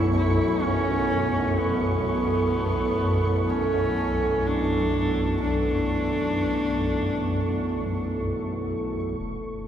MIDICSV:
0, 0, Header, 1, 6, 480
1, 0, Start_track
1, 0, Key_signature, 2, "minor"
1, 0, Tempo, 500000
1, 9290, End_track
2, 0, Start_track
2, 0, Title_t, "Synth texture"
2, 0, Program_c, 0, 99
2, 0, Note_on_c, 0, 85, 80
2, 8847, Note_off_c, 0, 85, 0
2, 9290, End_track
3, 0, Start_track
3, 0, Title_t, "Analog synth pad"
3, 0, Program_c, 1, 89
3, 0, Note_on_c, 1, 59, 79
3, 0, Note_on_c, 1, 64, 66
3, 0, Note_on_c, 1, 69, 84
3, 0, Note_on_c, 1, 78, 73
3, 8818, Note_off_c, 1, 59, 0
3, 8824, Note_off_c, 1, 64, 0
3, 8832, Note_off_c, 1, 78, 0
3, 8832, Note_on_c, 1, 59, 75
3, 9290, Note_off_c, 1, 59, 0
3, 9290, Note_off_c, 1, 69, 0
3, 9290, End_track
4, 0, Start_track
4, 0, Title_t, "Horsehead fiddle"
4, 0, Program_c, 2, 110
4, 0, Note_on_c, 2, 64, 90
4, 116, Note_off_c, 2, 64, 0
4, 161, Note_on_c, 2, 64, 78
4, 616, Note_on_c, 2, 61, 96
4, 630, Note_off_c, 2, 64, 0
4, 1527, Note_on_c, 2, 59, 92
4, 1542, Note_off_c, 2, 61, 0
4, 3359, Note_on_c, 2, 61, 89
4, 3373, Note_off_c, 2, 59, 0
4, 4284, Note_on_c, 2, 62, 86
4, 4298, Note_off_c, 2, 61, 0
4, 5185, Note_off_c, 2, 62, 0
4, 5190, Note_on_c, 2, 62, 90
4, 7885, Note_off_c, 2, 62, 0
4, 9290, End_track
5, 0, Start_track
5, 0, Title_t, "Synth drone"
5, 0, Program_c, 3, 95
5, 0, Note_on_c, 3, 35, 75
5, 0, Note_on_c, 3, 42, 74
5, 8827, Note_off_c, 3, 42, 0
5, 8834, Note_off_c, 3, 35, 0
5, 8839, Note_on_c, 3, 42, 67
5, 8846, Note_on_c, 3, 35, 70
5, 9290, Note_off_c, 3, 35, 0
5, 9290, Note_off_c, 3, 42, 0
5, 9290, End_track
6, 0, Start_track
6, 0, Title_t, "Drums"
6, 8830, Note_on_c, 9, 35, 53
6, 8926, Note_off_c, 9, 35, 0
6, 9290, End_track
0, 0, End_of_file